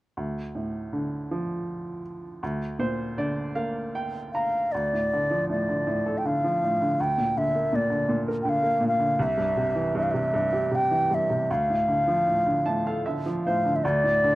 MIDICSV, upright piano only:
0, 0, Header, 1, 2, 480
1, 0, Start_track
1, 0, Key_signature, -1, "minor"
1, 0, Tempo, 762389
1, 96, Time_signature, 3, 2, 24, 8
1, 3454, Tempo, 745342
1, 6334, Tempo, 775194
1, 9053, End_track
2, 0, Start_track
2, 0, Title_t, "Upright piano"
2, 0, Program_c, 0, 0
2, 108, Note_on_c, 0, 38, 42
2, 228, Control_c, 0, 64, 127
2, 347, Note_on_c, 0, 45, 34
2, 585, Note_on_c, 0, 50, 37
2, 827, Note_on_c, 0, 53, 37
2, 1266, Note_off_c, 0, 45, 0
2, 1502, Note_off_c, 0, 50, 0
2, 1505, Note_off_c, 0, 38, 0
2, 1509, Note_off_c, 0, 53, 0
2, 1530, Note_on_c, 0, 38, 53
2, 1532, Control_c, 0, 64, 0
2, 1637, Control_c, 0, 64, 127
2, 1757, Note_on_c, 0, 46, 42
2, 1760, Note_on_c, 0, 72, 56
2, 1982, Note_off_c, 0, 72, 0
2, 1999, Note_on_c, 0, 50, 42
2, 2002, Note_on_c, 0, 74, 54
2, 2223, Note_off_c, 0, 74, 0
2, 2237, Note_on_c, 0, 77, 47
2, 2239, Note_on_c, 0, 58, 38
2, 2462, Note_off_c, 0, 77, 0
2, 2487, Note_on_c, 0, 79, 50
2, 2697, Note_off_c, 0, 46, 0
2, 2711, Note_off_c, 0, 79, 0
2, 2737, Note_on_c, 0, 82, 44
2, 2945, Note_off_c, 0, 50, 0
2, 2948, Note_off_c, 0, 38, 0
2, 2949, Note_off_c, 0, 58, 0
2, 2960, Note_off_c, 0, 82, 0
2, 2979, Control_c, 0, 64, 0
2, 2987, Note_on_c, 0, 38, 42
2, 3104, Control_c, 0, 64, 127
2, 3104, Note_on_c, 0, 45, 33
2, 3231, Note_on_c, 0, 50, 37
2, 3342, Note_on_c, 0, 53, 35
2, 3451, Note_off_c, 0, 45, 0
2, 3461, Note_on_c, 0, 45, 38
2, 3575, Note_off_c, 0, 50, 0
2, 3584, Note_on_c, 0, 50, 37
2, 3690, Note_off_c, 0, 45, 0
2, 3699, Note_on_c, 0, 45, 47
2, 3825, Note_on_c, 0, 69, 38
2, 3939, Note_off_c, 0, 50, 0
2, 3948, Note_on_c, 0, 50, 40
2, 4061, Note_off_c, 0, 53, 0
2, 4070, Note_on_c, 0, 53, 39
2, 4181, Note_off_c, 0, 45, 0
2, 4191, Note_on_c, 0, 45, 38
2, 4303, Note_off_c, 0, 50, 0
2, 4313, Note_on_c, 0, 50, 38
2, 4401, Note_off_c, 0, 38, 0
2, 4404, Note_off_c, 0, 69, 0
2, 4414, Note_off_c, 0, 53, 0
2, 4418, Note_off_c, 0, 45, 0
2, 4422, Note_off_c, 0, 50, 0
2, 4427, Control_c, 0, 64, 0
2, 4431, Note_on_c, 0, 38, 49
2, 4531, Control_c, 0, 64, 127
2, 4544, Note_on_c, 0, 46, 36
2, 4668, Note_on_c, 0, 50, 41
2, 4786, Note_on_c, 0, 58, 41
2, 4887, Note_off_c, 0, 46, 0
2, 4896, Note_on_c, 0, 46, 45
2, 4999, Note_off_c, 0, 50, 0
2, 5008, Note_on_c, 0, 50, 43
2, 5121, Note_off_c, 0, 46, 0
2, 5130, Note_on_c, 0, 46, 54
2, 5255, Note_on_c, 0, 70, 41
2, 5352, Note_off_c, 0, 50, 0
2, 5362, Note_on_c, 0, 50, 45
2, 5468, Note_off_c, 0, 58, 0
2, 5478, Note_on_c, 0, 58, 45
2, 5581, Note_off_c, 0, 46, 0
2, 5591, Note_on_c, 0, 46, 46
2, 5703, Note_off_c, 0, 50, 0
2, 5713, Note_on_c, 0, 50, 43
2, 5828, Note_off_c, 0, 38, 0
2, 5832, Note_off_c, 0, 46, 0
2, 5832, Note_off_c, 0, 58, 0
2, 5833, Note_off_c, 0, 70, 0
2, 5837, Note_off_c, 0, 50, 0
2, 5840, Note_on_c, 0, 36, 55
2, 5855, Control_c, 0, 64, 0
2, 5953, Control_c, 0, 64, 127
2, 5959, Note_on_c, 0, 43, 43
2, 6085, Note_on_c, 0, 48, 47
2, 6204, Note_on_c, 0, 52, 44
2, 6319, Note_off_c, 0, 43, 0
2, 6328, Note_on_c, 0, 43, 50
2, 6436, Note_off_c, 0, 48, 0
2, 6445, Note_on_c, 0, 48, 44
2, 6559, Note_off_c, 0, 43, 0
2, 6568, Note_on_c, 0, 43, 52
2, 6686, Note_on_c, 0, 67, 43
2, 6792, Note_off_c, 0, 48, 0
2, 6802, Note_on_c, 0, 48, 43
2, 6915, Note_off_c, 0, 52, 0
2, 6924, Note_on_c, 0, 52, 42
2, 7036, Note_off_c, 0, 43, 0
2, 7045, Note_on_c, 0, 43, 39
2, 7155, Note_off_c, 0, 48, 0
2, 7165, Note_on_c, 0, 48, 41
2, 7258, Note_off_c, 0, 36, 0
2, 7267, Note_off_c, 0, 67, 0
2, 7273, Note_off_c, 0, 52, 0
2, 7278, Note_off_c, 0, 43, 0
2, 7282, Note_off_c, 0, 48, 0
2, 7292, Note_on_c, 0, 38, 53
2, 7294, Control_c, 0, 64, 0
2, 7411, Note_on_c, 0, 45, 39
2, 7423, Control_c, 0, 64, 127
2, 7525, Note_on_c, 0, 50, 41
2, 7646, Note_on_c, 0, 53, 40
2, 7757, Note_off_c, 0, 45, 0
2, 7766, Note_on_c, 0, 45, 39
2, 7876, Note_off_c, 0, 50, 0
2, 7886, Note_on_c, 0, 50, 38
2, 7995, Note_off_c, 0, 45, 0
2, 8004, Note_on_c, 0, 45, 45
2, 8005, Note_on_c, 0, 81, 47
2, 8116, Note_off_c, 0, 81, 0
2, 8135, Note_on_c, 0, 69, 35
2, 8135, Note_on_c, 0, 77, 44
2, 8243, Note_off_c, 0, 77, 0
2, 8251, Note_off_c, 0, 50, 0
2, 8254, Note_on_c, 0, 76, 46
2, 8260, Note_on_c, 0, 50, 37
2, 8369, Note_off_c, 0, 53, 0
2, 8379, Note_on_c, 0, 53, 38
2, 8479, Note_off_c, 0, 76, 0
2, 8497, Note_off_c, 0, 45, 0
2, 8506, Note_on_c, 0, 45, 36
2, 8506, Note_on_c, 0, 72, 44
2, 8611, Note_off_c, 0, 50, 0
2, 8620, Note_on_c, 0, 50, 33
2, 8713, Note_off_c, 0, 38, 0
2, 8724, Note_off_c, 0, 69, 0
2, 8726, Note_off_c, 0, 72, 0
2, 8730, Note_off_c, 0, 53, 0
2, 8735, Note_off_c, 0, 45, 0
2, 8735, Note_off_c, 0, 50, 0
2, 8742, Control_c, 0, 64, 0
2, 8743, Note_on_c, 0, 38, 57
2, 8859, Note_on_c, 0, 45, 40
2, 8867, Control_c, 0, 64, 127
2, 8985, Note_on_c, 0, 50, 45
2, 9053, Note_off_c, 0, 38, 0
2, 9053, Note_off_c, 0, 45, 0
2, 9053, Note_off_c, 0, 50, 0
2, 9053, End_track
0, 0, End_of_file